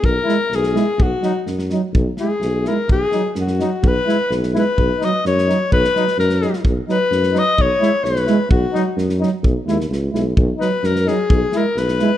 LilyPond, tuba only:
\new Staff \with { instrumentName = "Tuba" } { \clef bass \time 2/4 \key b \major \tempo 4 = 128 b,,8 r8 b,,4 | b,,8 r8 fis,4 | b,,8 r8 b,,4 | b,,8 r8 fis,4 |
b,,8 r8 b,,4 | b,,8 r8 fis,4 | b,,8 r8 fis,4 | b,,8 r8 fis,4 |
b,,8 r8 b,,4 | b,,8 r8 fis,4 | b,,8 dis,8 cis,8 b,,8 | b,,8 r8 fis,4 |
b,,8 r8 b,,4 | }